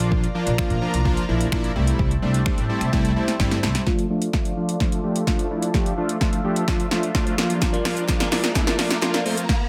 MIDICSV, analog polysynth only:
0, 0, Header, 1, 2, 480
1, 0, Start_track
1, 0, Key_signature, -1, "minor"
1, 0, Tempo, 468750
1, 120, Time_signature, 4, 2, 24, 8
1, 9921, End_track
2, 0, Start_track
2, 0, Title_t, "Analog polysynth"
2, 0, Program_c, 0, 90
2, 0, Note_on_c, 0, 53, 90
2, 0, Note_on_c, 0, 58, 77
2, 0, Note_on_c, 0, 62, 77
2, 0, Note_on_c, 0, 65, 98
2, 265, Note_off_c, 0, 53, 0
2, 266, Note_off_c, 0, 58, 0
2, 267, Note_off_c, 0, 62, 0
2, 268, Note_off_c, 0, 65, 0
2, 355, Note_on_c, 0, 53, 81
2, 357, Note_on_c, 0, 58, 80
2, 359, Note_on_c, 0, 62, 76
2, 360, Note_on_c, 0, 65, 92
2, 551, Note_off_c, 0, 53, 0
2, 553, Note_off_c, 0, 58, 0
2, 553, Note_off_c, 0, 62, 0
2, 554, Note_off_c, 0, 65, 0
2, 595, Note_on_c, 0, 53, 84
2, 597, Note_on_c, 0, 58, 80
2, 598, Note_on_c, 0, 62, 80
2, 600, Note_on_c, 0, 65, 93
2, 792, Note_off_c, 0, 53, 0
2, 792, Note_off_c, 0, 58, 0
2, 793, Note_off_c, 0, 62, 0
2, 794, Note_off_c, 0, 65, 0
2, 836, Note_on_c, 0, 53, 88
2, 837, Note_on_c, 0, 58, 76
2, 838, Note_on_c, 0, 62, 79
2, 840, Note_on_c, 0, 65, 95
2, 1032, Note_off_c, 0, 53, 0
2, 1032, Note_off_c, 0, 58, 0
2, 1033, Note_off_c, 0, 62, 0
2, 1034, Note_off_c, 0, 65, 0
2, 1073, Note_on_c, 0, 53, 115
2, 1075, Note_on_c, 0, 58, 101
2, 1077, Note_on_c, 0, 62, 104
2, 1079, Note_on_c, 0, 65, 127
2, 1270, Note_off_c, 0, 53, 0
2, 1272, Note_off_c, 0, 58, 0
2, 1273, Note_off_c, 0, 62, 0
2, 1273, Note_off_c, 0, 65, 0
2, 1315, Note_on_c, 0, 53, 88
2, 1317, Note_on_c, 0, 58, 81
2, 1319, Note_on_c, 0, 62, 83
2, 1320, Note_on_c, 0, 64, 95
2, 1511, Note_off_c, 0, 53, 0
2, 1512, Note_off_c, 0, 58, 0
2, 1513, Note_off_c, 0, 62, 0
2, 1514, Note_off_c, 0, 64, 0
2, 1555, Note_on_c, 0, 53, 108
2, 1556, Note_on_c, 0, 58, 100
2, 1558, Note_on_c, 0, 62, 102
2, 1560, Note_on_c, 0, 64, 123
2, 1751, Note_off_c, 0, 53, 0
2, 1752, Note_off_c, 0, 58, 0
2, 1753, Note_off_c, 0, 62, 0
2, 1754, Note_off_c, 0, 64, 0
2, 1795, Note_on_c, 0, 55, 87
2, 1797, Note_on_c, 0, 57, 80
2, 1799, Note_on_c, 0, 60, 77
2, 1800, Note_on_c, 0, 64, 98
2, 2186, Note_off_c, 0, 55, 0
2, 2186, Note_off_c, 0, 57, 0
2, 2187, Note_off_c, 0, 60, 0
2, 2188, Note_off_c, 0, 64, 0
2, 2275, Note_on_c, 0, 55, 85
2, 2276, Note_on_c, 0, 57, 77
2, 2278, Note_on_c, 0, 60, 74
2, 2280, Note_on_c, 0, 62, 89
2, 2471, Note_off_c, 0, 55, 0
2, 2472, Note_off_c, 0, 57, 0
2, 2473, Note_off_c, 0, 60, 0
2, 2474, Note_off_c, 0, 62, 0
2, 2516, Note_on_c, 0, 55, 87
2, 2517, Note_on_c, 0, 57, 77
2, 2519, Note_on_c, 0, 60, 82
2, 2521, Note_on_c, 0, 62, 91
2, 2712, Note_off_c, 0, 55, 0
2, 2712, Note_off_c, 0, 57, 0
2, 2713, Note_off_c, 0, 60, 0
2, 2715, Note_off_c, 0, 62, 0
2, 2757, Note_on_c, 0, 55, 89
2, 2758, Note_on_c, 0, 57, 76
2, 2760, Note_on_c, 0, 60, 77
2, 2762, Note_on_c, 0, 64, 95
2, 2952, Note_off_c, 0, 55, 0
2, 2953, Note_off_c, 0, 57, 0
2, 2954, Note_off_c, 0, 60, 0
2, 2955, Note_off_c, 0, 64, 0
2, 2997, Note_on_c, 0, 55, 109
2, 2998, Note_on_c, 0, 57, 108
2, 3000, Note_on_c, 0, 60, 102
2, 3002, Note_on_c, 0, 64, 127
2, 3192, Note_off_c, 0, 55, 0
2, 3193, Note_off_c, 0, 57, 0
2, 3194, Note_off_c, 0, 60, 0
2, 3195, Note_off_c, 0, 64, 0
2, 3236, Note_on_c, 0, 55, 85
2, 3238, Note_on_c, 0, 57, 79
2, 3240, Note_on_c, 0, 60, 81
2, 3241, Note_on_c, 0, 64, 97
2, 3432, Note_off_c, 0, 55, 0
2, 3433, Note_off_c, 0, 57, 0
2, 3434, Note_off_c, 0, 60, 0
2, 3434, Note_off_c, 0, 64, 0
2, 3476, Note_on_c, 0, 55, 114
2, 3478, Note_on_c, 0, 57, 102
2, 3479, Note_on_c, 0, 60, 105
2, 3481, Note_on_c, 0, 64, 123
2, 3672, Note_off_c, 0, 55, 0
2, 3673, Note_off_c, 0, 57, 0
2, 3673, Note_off_c, 0, 60, 0
2, 3674, Note_off_c, 0, 64, 0
2, 3715, Note_on_c, 0, 55, 79
2, 3717, Note_on_c, 0, 57, 73
2, 3718, Note_on_c, 0, 60, 76
2, 3720, Note_on_c, 0, 64, 90
2, 3911, Note_off_c, 0, 55, 0
2, 3912, Note_off_c, 0, 57, 0
2, 3913, Note_off_c, 0, 60, 0
2, 3914, Note_off_c, 0, 64, 0
2, 3955, Note_on_c, 0, 53, 108
2, 3957, Note_on_c, 0, 57, 102
2, 3958, Note_on_c, 0, 62, 101
2, 3960, Note_on_c, 0, 65, 125
2, 4151, Note_off_c, 0, 53, 0
2, 4153, Note_off_c, 0, 57, 0
2, 4153, Note_off_c, 0, 62, 0
2, 4154, Note_off_c, 0, 65, 0
2, 4196, Note_on_c, 0, 53, 105
2, 4198, Note_on_c, 0, 57, 99
2, 4199, Note_on_c, 0, 62, 100
2, 4201, Note_on_c, 0, 65, 120
2, 4392, Note_off_c, 0, 53, 0
2, 4393, Note_off_c, 0, 57, 0
2, 4394, Note_off_c, 0, 62, 0
2, 4394, Note_off_c, 0, 65, 0
2, 4436, Note_on_c, 0, 53, 83
2, 4438, Note_on_c, 0, 57, 79
2, 4440, Note_on_c, 0, 62, 76
2, 4442, Note_on_c, 0, 65, 90
2, 4632, Note_off_c, 0, 53, 0
2, 4633, Note_off_c, 0, 57, 0
2, 4634, Note_off_c, 0, 62, 0
2, 4635, Note_off_c, 0, 65, 0
2, 4675, Note_on_c, 0, 53, 87
2, 4677, Note_on_c, 0, 57, 78
2, 4679, Note_on_c, 0, 62, 77
2, 4680, Note_on_c, 0, 65, 93
2, 4872, Note_off_c, 0, 53, 0
2, 4872, Note_off_c, 0, 57, 0
2, 4873, Note_off_c, 0, 62, 0
2, 4874, Note_off_c, 0, 65, 0
2, 4915, Note_on_c, 0, 53, 89
2, 4916, Note_on_c, 0, 57, 81
2, 4918, Note_on_c, 0, 62, 78
2, 4920, Note_on_c, 0, 65, 96
2, 5111, Note_off_c, 0, 53, 0
2, 5112, Note_off_c, 0, 57, 0
2, 5113, Note_off_c, 0, 62, 0
2, 5114, Note_off_c, 0, 65, 0
2, 5156, Note_on_c, 0, 53, 86
2, 5157, Note_on_c, 0, 57, 78
2, 5159, Note_on_c, 0, 62, 79
2, 5161, Note_on_c, 0, 67, 98
2, 5352, Note_off_c, 0, 53, 0
2, 5352, Note_off_c, 0, 57, 0
2, 5353, Note_off_c, 0, 62, 0
2, 5354, Note_off_c, 0, 67, 0
2, 5395, Note_on_c, 0, 53, 111
2, 5395, Note_on_c, 0, 57, 102
2, 5398, Note_on_c, 0, 62, 101
2, 5400, Note_on_c, 0, 65, 120
2, 5591, Note_off_c, 0, 53, 0
2, 5592, Note_off_c, 0, 57, 0
2, 5593, Note_off_c, 0, 62, 0
2, 5594, Note_off_c, 0, 65, 0
2, 5637, Note_on_c, 0, 53, 81
2, 5638, Note_on_c, 0, 57, 76
2, 5640, Note_on_c, 0, 62, 74
2, 5642, Note_on_c, 0, 64, 86
2, 5832, Note_off_c, 0, 53, 0
2, 5833, Note_off_c, 0, 57, 0
2, 5834, Note_off_c, 0, 62, 0
2, 5835, Note_off_c, 0, 64, 0
2, 5876, Note_on_c, 0, 53, 113
2, 5878, Note_on_c, 0, 57, 100
2, 5879, Note_on_c, 0, 62, 98
2, 5881, Note_on_c, 0, 67, 115
2, 6072, Note_off_c, 0, 53, 0
2, 6073, Note_off_c, 0, 57, 0
2, 6073, Note_off_c, 0, 62, 0
2, 6074, Note_off_c, 0, 67, 0
2, 6117, Note_on_c, 0, 53, 108
2, 6118, Note_on_c, 0, 57, 98
2, 6120, Note_on_c, 0, 62, 104
2, 6122, Note_on_c, 0, 65, 116
2, 6313, Note_off_c, 0, 53, 0
2, 6313, Note_off_c, 0, 57, 0
2, 6314, Note_off_c, 0, 62, 0
2, 6315, Note_off_c, 0, 65, 0
2, 6357, Note_on_c, 0, 53, 85
2, 6358, Note_on_c, 0, 57, 78
2, 6360, Note_on_c, 0, 62, 80
2, 6362, Note_on_c, 0, 65, 98
2, 6552, Note_off_c, 0, 53, 0
2, 6553, Note_off_c, 0, 57, 0
2, 6554, Note_off_c, 0, 62, 0
2, 6555, Note_off_c, 0, 65, 0
2, 6597, Note_on_c, 0, 53, 89
2, 6598, Note_on_c, 0, 57, 80
2, 6600, Note_on_c, 0, 62, 79
2, 6602, Note_on_c, 0, 67, 97
2, 6792, Note_off_c, 0, 53, 0
2, 6793, Note_off_c, 0, 57, 0
2, 6794, Note_off_c, 0, 62, 0
2, 6795, Note_off_c, 0, 67, 0
2, 6837, Note_on_c, 0, 53, 89
2, 6838, Note_on_c, 0, 57, 86
2, 6840, Note_on_c, 0, 62, 86
2, 6841, Note_on_c, 0, 65, 99
2, 7032, Note_off_c, 0, 53, 0
2, 7033, Note_off_c, 0, 57, 0
2, 7034, Note_off_c, 0, 62, 0
2, 7035, Note_off_c, 0, 65, 0
2, 7077, Note_on_c, 0, 53, 88
2, 7078, Note_on_c, 0, 57, 80
2, 7081, Note_on_c, 0, 62, 79
2, 7082, Note_on_c, 0, 65, 99
2, 7272, Note_off_c, 0, 53, 0
2, 7273, Note_off_c, 0, 57, 0
2, 7274, Note_off_c, 0, 62, 0
2, 7275, Note_off_c, 0, 65, 0
2, 7317, Note_on_c, 0, 53, 108
2, 7319, Note_on_c, 0, 57, 101
2, 7320, Note_on_c, 0, 62, 102
2, 7322, Note_on_c, 0, 65, 124
2, 7512, Note_off_c, 0, 53, 0
2, 7513, Note_off_c, 0, 57, 0
2, 7514, Note_off_c, 0, 62, 0
2, 7515, Note_off_c, 0, 65, 0
2, 7557, Note_on_c, 0, 53, 87
2, 7559, Note_on_c, 0, 58, 81
2, 7560, Note_on_c, 0, 62, 81
2, 7561, Note_on_c, 0, 65, 93
2, 7947, Note_off_c, 0, 53, 0
2, 7948, Note_off_c, 0, 58, 0
2, 7948, Note_off_c, 0, 62, 0
2, 7949, Note_off_c, 0, 65, 0
2, 8036, Note_on_c, 0, 53, 110
2, 8037, Note_on_c, 0, 58, 100
2, 8039, Note_on_c, 0, 62, 102
2, 8041, Note_on_c, 0, 65, 120
2, 8232, Note_off_c, 0, 53, 0
2, 8233, Note_off_c, 0, 58, 0
2, 8234, Note_off_c, 0, 62, 0
2, 8234, Note_off_c, 0, 65, 0
2, 8274, Note_on_c, 0, 53, 89
2, 8275, Note_on_c, 0, 58, 84
2, 8277, Note_on_c, 0, 62, 82
2, 8280, Note_on_c, 0, 65, 95
2, 8471, Note_off_c, 0, 53, 0
2, 8472, Note_off_c, 0, 58, 0
2, 8473, Note_off_c, 0, 62, 0
2, 8474, Note_off_c, 0, 65, 0
2, 8515, Note_on_c, 0, 53, 86
2, 8517, Note_on_c, 0, 58, 82
2, 8519, Note_on_c, 0, 62, 78
2, 8521, Note_on_c, 0, 64, 97
2, 8712, Note_off_c, 0, 53, 0
2, 8712, Note_off_c, 0, 58, 0
2, 8713, Note_off_c, 0, 62, 0
2, 8714, Note_off_c, 0, 64, 0
2, 8756, Note_on_c, 0, 53, 90
2, 8758, Note_on_c, 0, 58, 84
2, 8760, Note_on_c, 0, 62, 84
2, 8762, Note_on_c, 0, 64, 99
2, 8952, Note_off_c, 0, 53, 0
2, 8953, Note_off_c, 0, 58, 0
2, 8954, Note_off_c, 0, 62, 0
2, 8955, Note_off_c, 0, 64, 0
2, 8997, Note_on_c, 0, 53, 89
2, 8998, Note_on_c, 0, 58, 83
2, 9000, Note_on_c, 0, 62, 84
2, 9001, Note_on_c, 0, 65, 102
2, 9192, Note_off_c, 0, 53, 0
2, 9193, Note_off_c, 0, 58, 0
2, 9194, Note_off_c, 0, 62, 0
2, 9194, Note_off_c, 0, 65, 0
2, 9236, Note_on_c, 0, 53, 117
2, 9238, Note_on_c, 0, 58, 104
2, 9239, Note_on_c, 0, 62, 105
2, 9241, Note_on_c, 0, 65, 127
2, 9432, Note_off_c, 0, 53, 0
2, 9433, Note_off_c, 0, 58, 0
2, 9434, Note_off_c, 0, 62, 0
2, 9434, Note_off_c, 0, 65, 0
2, 9477, Note_on_c, 0, 53, 89
2, 9478, Note_on_c, 0, 57, 77
2, 9480, Note_on_c, 0, 60, 80
2, 9482, Note_on_c, 0, 65, 97
2, 9672, Note_off_c, 0, 53, 0
2, 9673, Note_off_c, 0, 57, 0
2, 9674, Note_off_c, 0, 60, 0
2, 9675, Note_off_c, 0, 65, 0
2, 9921, End_track
0, 0, End_of_file